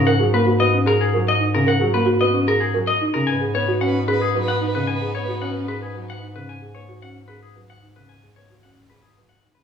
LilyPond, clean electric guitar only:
\new Staff \with { instrumentName = "Clean electric guitar" } { \time 3/4 \key b \major \tempo 4 = 112 fis''16 r16 b'16 r16 dis''16 r16 ais'16 gis'16 r16 dis''16 r16 ais'16 | fis''16 r16 b'16 r16 dis''16 r16 ais'16 gis'16 r16 dis''16 r16 ais'16 | gis''16 r16 cis''16 r16 fis''16 r16 b'16 gis'16 r16 fis''16 r16 b'16 | gis''16 r16 cis''16 r16 fis''16 r16 b'16 gis'16 r16 fis''16 r16 b'16 |
gis''16 r16 cis''16 r16 fis''16 r16 b'16 gis'16 r16 fis''16 r16 b'16 | gis''16 r16 cis''16 r16 fis''16 r16 b'16 gis'16 r16 fis''16 r16 b'16 | }